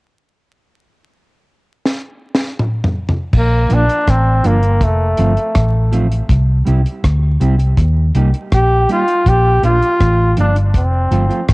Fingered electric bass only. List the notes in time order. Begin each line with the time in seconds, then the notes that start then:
3.33 A#1
3.71 A#1
4.08 A1
4.45 G1
4.81 F1
5.19 G1
5.56 A1
6.30 C2
6.67 C2
7.04 D2
7.41 C2
7.78 D#2
8.15 C2
8.53 A#1
9.26 A#1
9.63 A#1
10.01 A1
10.38 G1
10.75 F1
11.12 G1
11.49 A1